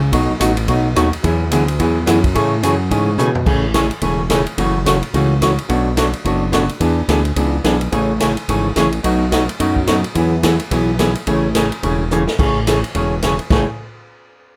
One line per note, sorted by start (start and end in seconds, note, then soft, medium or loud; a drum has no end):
0.00 0.12 C#2 medium
0.12 0.28 B1 medium
0.12 0.32 B2 medium
0.12 0.32 F#3 medium
0.12 0.32 A3 medium
0.12 0.32 D#4 medium
0.12 0.32 F#4 medium
0.12 kick soft
0.12 ride medium
0.29 0.35 B1 soft
0.40 0.68 A1 medium
0.40 0.51 B2 medium
0.40 0.51 F#3 medium
0.40 0.51 A3 medium
0.40 0.51 D#4 medium
0.40 0.52 F#4 medium
0.40 hi-hat pedal medium
0.40 ride medium
0.57 ride medium
0.68 0.95 B1 medium
0.68 0.87 B2 medium
0.68 0.87 F#3 medium
0.68 0.88 A3 medium
0.68 0.88 D#4 medium
0.68 0.88 F#4 medium
0.68 kick soft
0.68 ride medium
0.96 1.12 D#2 loud
0.96 1.07 B2 medium
0.96 1.07 F#3 medium
0.96 1.07 A3 medium
0.96 1.07 D#4 medium
0.96 1.07 F#4 medium
0.96 cross-stick medium
0.96 hi-hat pedal medium
0.96 ride medium
1.13 1.18 D#2 soft
1.13 ride medium
1.23 1.51 E2 medium
1.23 1.43 E3 medium
1.23 1.43 F#3 medium
1.23 1.43 B3 medium
1.23 1.43 E4 medium
1.23 1.43 G#4 medium
1.23 kick soft
1.23 ride medium
1.51 1.79 D2 medium
1.51 1.62 E3 medium
1.51 1.63 F#3 medium
1.51 1.63 B3 medium
1.51 1.63 E4 medium
1.51 1.63 G#4 medium
1.51 hi-hat pedal medium
1.51 ride medium
1.68 ride medium
1.79 2.07 E2 medium
1.79 1.98 E3 medium
1.79 1.98 F#3 medium
1.79 1.99 B3 medium
1.79 1.99 E4 medium
1.79 1.99 G#4 medium
1.79 kick soft
1.79 ride medium
2.06 2.35 F#2 medium
2.06 2.18 E3 medium
2.06 2.18 F#3 medium
2.06 2.18 B3 medium
2.06 2.18 E4 medium
2.06 2.18 G#4 medium
2.06 cross-stick medium
2.06 snare soft
2.06 hi-hat pedal medium
2.06 ride medium
2.24 kick medium
2.24 ride medium
2.35 2.62 A2 medium
2.35 2.54 C#3 medium
2.35 2.54 E3 medium
2.35 2.54 A3 medium
2.35 2.54 C#4 medium
2.35 2.55 G#4 medium
2.35 kick soft
2.35 ride medium
2.63 2.90 F#2 medium
2.63 2.74 C#3 medium
2.63 2.74 E3 medium
2.63 2.74 A3 medium
2.63 2.74 C#4 medium
2.63 2.74 G#4 medium
2.63 hi-hat pedal medium
2.63 ride medium
2.90 3.18 G#2 medium
2.90 3.10 C#3 medium
2.90 3.10 E3 medium
2.90 3.10 A3 medium
2.90 3.10 C#4 medium
2.90 3.10 G#4 medium
2.90 kick soft
2.90 ride medium
3.18 3.45 B2 medium
3.18 3.29 C#3 medium
3.18 3.29 E3 medium
3.18 3.29 A3 medium
3.18 3.29 C#4 medium
3.18 3.30 G#4 medium
3.18 hi-hat pedal soft
3.35 floor tom medium
3.46 3.91 A1 medium
3.46 3.65 C#3 medium
3.46 3.65 E3 medium
3.46 3.65 A3 medium
3.46 3.66 C#4 medium
3.46 3.66 G#4 medium
3.46 kick medium
3.46 crash medium
3.74 3.85 C#3 medium
3.74 3.85 E3 medium
3.74 3.85 A3 medium
3.74 3.85 C#4 medium
3.74 3.85 G#4 medium
3.74 kick soft
3.74 snare medium
3.74 hi-hat pedal medium
3.74 ride medium
3.91 ride soft
4.02 4.46 E1 medium
4.02 4.21 C#3 medium
4.02 4.21 E3 medium
4.02 4.21 A3 medium
4.02 4.21 C#4 medium
4.02 4.22 G#4 medium
4.02 kick soft
4.02 ride medium
4.30 4.40 C#3 medium
4.30 4.41 E3 medium
4.30 4.41 A3 medium
4.30 4.41 C#4 medium
4.30 4.41 G#4 medium
4.30 kick soft
4.30 snare medium
4.30 hi-hat pedal medium
4.30 ride medium
4.46 ride soft
4.58 5.02 F#1 medium
4.58 4.77 C#3 medium
4.58 4.77 E3 medium
4.58 4.77 A3 medium
4.58 4.77 C#4 medium
4.58 4.77 F#4 medium
4.58 kick soft
4.58 ride medium
4.86 4.96 C#3 medium
4.86 4.97 E3 medium
4.86 4.97 A3 medium
4.86 4.97 C#4 medium
4.86 4.97 F#4 medium
4.86 kick soft
4.86 snare medium
4.86 hi-hat pedal medium
4.86 ride medium
5.03 ride soft
5.14 5.58 C#2 medium
5.14 5.33 C#3 medium
5.14 5.33 E3 medium
5.14 5.33 A3 medium
5.14 5.33 C#4 medium
5.14 5.33 F#4 medium
5.14 kick soft
5.14 ride medium
5.41 5.52 C#3 medium
5.41 5.52 E3 medium
5.41 5.52 A3 medium
5.41 5.52 C#4 medium
5.41 5.52 F#4 medium
5.41 kick soft
5.41 snare medium
5.41 hi-hat pedal medium
5.41 ride medium
5.58 ride soft
5.69 6.14 B1 medium
5.69 5.88 B2 medium
5.69 5.88 F#3 medium
5.69 5.88 A3 medium
5.69 5.88 D4 medium
5.69 5.88 F#4 medium
5.69 kick soft
5.69 ride medium
5.96 6.07 B2 medium
5.96 6.08 F#3 medium
5.96 6.08 A3 medium
5.96 6.08 D4 medium
5.96 6.08 F#4 medium
5.96 kick soft
5.96 snare medium
5.96 hi-hat pedal medium
5.96 ride medium
6.13 ride soft
6.25 6.70 F#1 medium
6.25 6.44 B2 medium
6.25 6.44 F#3 medium
6.25 6.44 A3 medium
6.25 6.44 D4 medium
6.25 6.44 F#4 medium
6.25 kick soft
6.25 ride medium
6.52 6.63 B2 medium
6.52 6.63 F#3 medium
6.52 6.64 A3 medium
6.52 6.64 D4 medium
6.52 6.64 F#4 medium
6.52 kick soft
6.52 snare medium
6.52 hi-hat pedal medium
6.52 ride medium
6.69 ride soft
6.80 7.03 E2 medium
6.80 6.99 E3 medium
6.80 7.00 B3 medium
6.80 7.00 D4 medium
6.80 7.00 G#4 medium
6.80 kick soft
6.80 ride medium
7.08 7.32 D2 medium
7.08 7.19 E3 medium
7.08 7.19 B3 medium
7.08 7.20 D4 medium
7.08 7.20 G#4 medium
7.08 kick soft
7.08 snare medium
7.08 hi-hat pedal medium
7.08 ride medium
7.25 ride soft
7.36 7.60 C#2 medium
7.36 7.55 E3 medium
7.36 7.56 B3 medium
7.36 7.56 D4 medium
7.36 7.56 G#4 medium
7.36 kick soft
7.36 ride medium
7.64 7.88 B1 medium
7.64 7.75 E3 medium
7.64 7.75 B3 medium
7.64 7.75 D4 medium
7.64 7.75 G#4 medium
7.64 kick soft
7.64 snare medium
7.64 hi-hat pedal medium
7.64 ride medium
7.81 ride soft
7.92 8.37 A1 medium
7.92 8.11 C#3 medium
7.92 8.11 E3 medium
7.92 8.11 A3 medium
7.92 8.12 C#4 medium
7.92 8.12 G#4 medium
7.92 kick soft
7.92 ride medium
8.20 8.31 C#3 medium
8.20 8.31 E3 medium
8.20 8.31 A3 medium
8.20 8.31 C#4 medium
8.20 8.31 G#4 medium
8.20 kick soft
8.20 snare medium
8.20 hi-hat pedal medium
8.20 ride medium
8.37 ride soft
8.48 8.72 G#1 medium
8.48 8.68 C#3 soft
8.48 8.68 E3 medium
8.48 8.68 A3 medium
8.48 8.68 C#4 medium
8.48 8.68 G#4 medium
8.48 kick soft
8.48 ride medium
8.76 9.00 A1 medium
8.76 8.87 C#3 medium
8.76 8.87 E3 medium
8.76 8.87 A3 medium
8.76 8.87 C#4 medium
8.76 8.87 G#4 medium
8.76 kick soft
8.76 snare medium
8.76 hi-hat pedal medium
8.76 ride medium
8.92 ride soft
9.03 9.49 B1 medium
9.03 9.23 B2 medium
9.03 9.23 F#3 medium
9.03 9.23 A3 medium
9.03 9.23 D#4 medium
9.03 9.23 F#4 medium
9.03 kick soft
9.03 ride medium
9.31 9.42 B2 medium
9.31 9.43 F#3 medium
9.31 9.43 A3 medium
9.31 9.43 D#4 medium
9.31 9.43 F#4 medium
9.31 kick soft
9.31 snare medium
9.31 hi-hat pedal medium
9.31 ride medium
9.49 ride medium
9.60 10.05 F#2 medium
9.60 9.79 B2 medium
9.60 9.79 F#3 medium
9.60 9.79 A3 medium
9.60 9.79 D#4 medium
9.60 9.79 F#4 medium
9.60 kick soft
9.60 ride medium
9.76 kick soft
9.87 9.98 B2 medium
9.87 9.98 F#3 medium
9.87 9.98 A3 medium
9.87 9.98 D#4 medium
9.87 9.99 F#4 medium
9.87 kick soft
9.87 snare medium
9.87 hi-hat pedal medium
9.87 ride medium
10.04 ride soft
10.15 10.60 E2 medium
10.15 10.34 E3 medium
10.15 10.34 F#3 medium
10.15 10.35 B3 medium
10.15 10.35 E4 medium
10.15 10.35 G#4 medium
10.15 kick soft
10.15 ride medium
10.43 10.54 E3 medium
10.43 10.54 F#3 medium
10.43 10.54 B3 medium
10.43 10.54 E4 medium
10.43 10.54 G#4 medium
10.43 kick soft
10.43 snare medium
10.43 hi-hat pedal medium
10.43 ride medium
10.60 ride medium
10.71 11.16 B1 medium
10.71 10.90 E3 medium
10.71 10.90 F#3 medium
10.71 10.91 B3 medium
10.71 10.91 E4 medium
10.71 10.91 G#4 medium
10.71 kick soft
10.71 ride medium
10.99 11.10 E3 medium
10.99 11.10 F#3 medium
10.99 11.10 B3 medium
10.99 11.10 E4 medium
10.99 11.10 G#4 medium
10.99 kick soft
10.99 snare medium
10.99 hi-hat pedal medium
10.99 ride medium
11.15 ride medium
11.27 11.72 A1 medium
11.27 11.46 C#3 medium
11.27 11.46 E3 medium
11.27 11.47 A3 medium
11.27 11.47 C#4 medium
11.27 11.47 G#4 medium
11.27 kick soft
11.27 ride medium
11.55 11.66 C#3 medium
11.55 11.66 E3 medium
11.55 11.66 A3 medium
11.55 11.66 C#4 medium
11.55 11.67 G#4 medium
11.55 kick soft
11.55 snare medium
11.55 hi-hat pedal medium
11.55 ride medium
11.72 ride soft
11.83 12.28 E1 medium
11.83 12.02 C#3 medium
11.83 12.02 E3 medium
11.83 12.02 A3 medium
11.83 12.02 C#4 medium
11.83 12.03 G#4 medium
11.83 kick soft
11.83 ride medium
12.11 12.22 C#3 medium
12.11 12.22 E3 medium
12.11 12.22 A3 medium
12.11 12.22 C#4 medium
12.11 12.23 G#4 medium
12.11 hi-hat pedal medium
12.27 snare medium
12.39 12.84 A1 medium
12.39 12.58 C#3 medium
12.39 12.58 E3 medium
12.39 12.58 A3 medium
12.39 12.58 C#4 medium
12.39 12.59 G#4 medium
12.39 kick medium
12.39 crash medium
12.67 12.77 C#3 medium
12.67 12.78 E3 medium
12.67 12.78 A3 medium
12.67 12.78 C#4 medium
12.67 12.78 G#4 medium
12.67 kick soft
12.67 snare medium
12.67 hi-hat pedal medium
12.67 ride medium
12.84 ride soft
12.95 13.39 E1 medium
12.95 13.14 C#3 soft
12.95 13.14 E3 medium
12.95 13.14 A3 medium
12.95 13.14 C#4 medium
12.95 13.14 G#4 medium
12.95 kick soft
12.95 ride medium
13.22 13.33 C#3 medium
13.22 13.34 E3 medium
13.22 13.34 A3 medium
13.22 13.34 C#4 medium
13.22 13.34 G#4 medium
13.22 kick soft
13.22 snare medium
13.22 hi-hat pedal medium
13.22 ride medium
13.39 ride soft
13.50 13.66 A1 medium
13.50 13.64 A2 medium
13.50 13.64 C#3 medium
13.50 13.64 E3 medium
13.50 13.64 A3 medium
13.50 13.64 C#4 medium
13.50 13.65 G#4 medium
13.50 kick medium
13.50 snare medium
13.50 crash medium